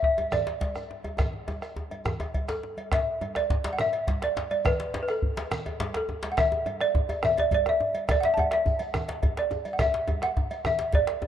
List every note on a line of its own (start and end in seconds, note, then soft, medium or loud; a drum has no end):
0.03 0.33 E5 loud
0.03 bombo rim soft
0.03 bombo low loud
0.18 cowbell medium
0.18 djembe slap soft
0.18 djembe tone medium
0.18 high conga medium
0.32 2.60 D5 medium
0.32 bombo rim loud
0.32 djembe slap medium
0.32 djembe tone loud
0.32 low conga medium
0.32 djembe bass medium
0.32 shekere medium
0.47 cowbell soft
0.47 djembe slap medium
0.61 bombo rim soft
0.61 bombo low medium
0.61 cowbell soft
0.61 djembe slap medium
0.61 high conga medium
0.75 bombo rim medium
0.75 djembe tone medium
0.75 shekere soft
0.91 djembe slap medium
1.04 cowbell soft
1.04 high conga medium
1.04 djembe tone medium
1.18 bombo rim medium
1.18 bombo low loud
1.18 cowbell medium
1.18 djembe slap soft
1.18 high conga soft
1.18 djembe tone medium
1.18 low conga medium
1.18 djembe bass medium
1.18 shekere medium
1.33 djembe slap soft
1.33 djembe tone medium
1.48 cowbell soft
1.48 djembe slap medium
1.48 djembe tone loud
1.48 high conga medium
1.48 shekere soft
1.62 bombo rim medium
1.62 cowbell soft
1.62 high conga soft
1.62 shekere soft
1.76 djembe slap soft
1.76 djembe tone loud
1.76 high conga soft
1.91 bombo rim soft
1.91 cowbell medium
1.91 djembe tone medium
1.91 high conga medium
2.05 bombo rim loud
2.05 djembe slap medium
2.05 djembe tone loud
2.05 high conga soft
2.05 djembe bass medium
2.05 low conga medium
2.05 shekere medium
2.20 cowbell medium
2.20 djembe tone loud
2.20 shekere soft
2.34 bombo low medium
2.34 cowbell medium
2.34 djembe slap soft
2.34 high conga medium
2.48 2.94 A4 medium
2.48 bombo rim medium
2.48 djembe slap medium
2.48 djembe slap soft
2.48 djembe tone medium
2.48 shekere soft
2.63 djembe slap medium
2.77 cowbell medium
2.77 high conga medium
2.92 3.37 E5 loud
2.92 bombo rim loud
2.92 bombo low loud
2.92 cowbell medium
2.92 djembe slap loud
2.92 high conga soft
2.92 low conga medium
2.92 djembe bass medium
2.92 shekere medium
3.07 high conga soft
3.21 cowbell medium
3.21 djembe slap medium
3.21 djembe tone medium
3.21 high conga medium
3.35 3.74 D5 loud
3.35 bombo rim medium
3.35 cowbell medium
3.35 djembe slap medium
3.35 shekere soft
3.50 bombo low loud
3.50 djembe slap medium
3.50 djembe bass medium
3.64 cowbell medium
3.64 djembe slap loud
3.64 djembe slap soft
3.64 high conga medium
3.64 shekere soft
3.73 3.79 F#5 medium
3.79 4.24 E5 loud
3.79 bombo rim loud
3.79 djembe slap medium
3.79 djembe tone medium
3.79 low conga medium
3.79 shekere medium
3.93 cowbell medium
3.93 high conga soft
4.07 bombo low loud
4.07 cowbell medium
4.07 djembe slap soft
4.07 djembe slap medium
4.07 high conga medium
4.07 djembe bass medium
4.22 4.50 D5 medium
4.22 bombo rim medium
4.22 djembe slap medium
4.22 high conga soft
4.37 bombo rim soft
4.37 djembe slap medium
4.37 djembe slap loud
4.37 djembe tone medium
4.51 4.66 D5 medium
4.51 cowbell medium
4.51 djembe slap soft
4.51 high conga medium
4.65 5.01 B4 medium
4.65 bombo rim loud
4.65 bombo low loud
4.65 cowbell medium
4.65 high conga soft
4.65 djembe bass medium
4.65 low conga medium
4.65 shekere medium
4.80 djembe slap medium
4.80 high conga soft
4.94 cowbell medium
4.94 djembe slap medium
4.94 djembe tone medium
4.94 high conga medium
5.03 5.09 B4 medium
5.08 5.96 A4 medium
5.08 bombo rim medium
5.08 cowbell soft
5.08 shekere soft
5.22 bombo low loud
5.22 high conga soft
5.22 djembe bass medium
5.37 cowbell medium
5.37 djembe slap loud
5.37 high conga medium
5.37 shekere soft
5.51 bombo rim loud
5.51 djembe slap medium
5.51 djembe tone medium
5.51 low conga medium
5.51 shekere medium
5.66 cowbell medium
5.66 djembe tone medium
5.66 high conga soft
5.80 cowbell medium
5.80 djembe slap loud
5.80 high conga medium
5.80 djembe bass medium
5.94 6.33 A4 medium
5.94 bombo rim medium
5.94 djembe slap medium
5.94 high conga soft
6.09 bombo rim soft
6.09 djembe tone medium
6.23 cowbell soft
6.23 djembe slap loud
6.23 djembe slap soft
6.23 high conga medium
6.32 6.38 F#5 medium
6.37 6.82 E5 loud
6.37 bombo rim loud
6.37 bombo low loud
6.37 cowbell medium
6.37 djembe slap medium
6.37 high conga soft
6.37 djembe bass medium
6.37 low conga medium
6.37 shekere medium
6.52 high conga soft
6.52 djembe tone medium
6.66 cowbell medium
6.66 djembe slap medium
6.66 djembe tone medium
6.66 high conga medium
6.80 7.25 D5 loud
6.80 bombo rim medium
6.80 cowbell medium
6.80 shekere soft
6.95 bombo low loud
6.95 djembe tone loud
6.95 high conga soft
6.95 djembe bass medium
7.09 cowbell medium
7.09 djembe slap soft
7.09 djembe tone medium
7.09 high conga medium
7.09 shekere soft
7.23 7.39 E5 loud
7.23 bombo rim loud
7.23 djembe slap medium
7.23 djembe tone medium
7.23 low conga medium
7.23 shekere medium
7.38 7.45 D5 loud
7.38 cowbell medium
7.38 djembe tone loud
7.51 7.60 D5 loud
7.51 bombo low loud
7.51 cowbell medium
7.51 djembe slap soft
7.51 high conga medium
7.51 djembe tone medium
7.51 djembe bass medium
7.66 8.07 E5 loud
7.66 bombo rim medium
7.66 djembe tone medium
7.80 bombo rim soft
7.80 djembe slap medium
7.80 djembe tone medium
7.94 cowbell medium
7.94 djembe slap soft
7.94 high conga medium
8.09 8.21 D5 loud
8.09 bombo rim loud
8.09 bombo low loud
8.09 cowbell medium
8.09 high conga soft
8.09 djembe tone loud
8.09 djembe bass medium
8.09 low conga medium
8.09 shekere medium
8.21 8.24 F#5 medium
8.21 bombo rim soft
8.21 djembe slap soft
8.21 djembe slap medium
8.21 high conga soft
8.25 8.35 E5 loud
8.34 8.37 A5 medium
8.34 bombo rim soft
8.34 cowbell medium
8.34 djembe slap medium
8.34 high conga medium
8.34 djembe tone medium
8.34 djembe bass medium
8.39 8.53 F#5 loud
8.51 9.40 E5 loud
8.51 bombo rim medium
8.51 cowbell medium
8.51 djembe slap medium
8.66 bombo low loud
8.66 djembe tone medium
8.66 djembe bass medium
8.66 shekere soft
8.79 cowbell medium
8.79 djembe slap soft
8.79 high conga medium
8.79 shekere soft
8.94 bombo rim loud
8.94 djembe slap medium
8.94 high conga soft
8.94 djembe tone medium
8.94 djembe tone loud
8.94 low conga medium
8.94 shekere medium
9.08 bombo rim soft
9.08 cowbell medium
9.08 djembe slap medium
9.08 high conga soft
9.23 bombo rim soft
9.23 bombo low loud
9.23 cowbell medium
9.23 high conga medium
9.23 djembe bass medium
9.37 9.75 D5 loud
9.37 bombo rim medium
9.37 djembe slap soft
9.37 djembe slap medium
9.51 bombo rim soft
9.51 djembe slap medium
9.51 djembe tone medium
9.51 shekere soft
9.65 cowbell medium
9.65 djembe slap soft
9.65 high conga medium
9.65 shekere soft
9.73 9.79 F#5 medium
9.79 10.24 E5 loud
9.79 bombo rim loud
9.79 bombo low loud
9.79 cowbell medium
9.79 high conga soft
9.79 djembe tone loud
9.79 djembe bass medium
9.79 low conga medium
9.79 shekere medium
9.94 djembe slap medium
9.94 high conga soft
10.08 cowbell medium
10.08 djembe slap medium
10.08 djembe tone medium
10.08 high conga medium
10.08 djembe bass medium
10.22 10.66 F#5 loud
10.22 bombo rim medium
10.22 cowbell medium
10.22 djembe slap medium
10.22 shekere soft
10.37 bombo low loud
10.37 djembe tone medium
10.37 djembe bass medium
10.50 cowbell medium
10.50 djembe slap soft
10.50 high conga medium
10.50 shekere soft
10.65 10.95 E5 loud
10.65 bombo rim loud
10.65 djembe slap medium
10.65 djembe tone loud
10.65 djembe tone medium
10.65 low conga medium
10.65 shekere medium
10.79 cowbell soft
10.79 djembe slap medium
10.92 11.27 D5 loud
10.92 bombo low loud
10.92 cowbell medium
10.92 djembe slap soft
10.92 high conga medium
10.92 djembe bass medium
11.07 bombo rim medium
11.07 djembe slap medium
11.07 high conga soft
11.22 bombo rim soft
11.22 djembe slap medium
11.22 djembe tone medium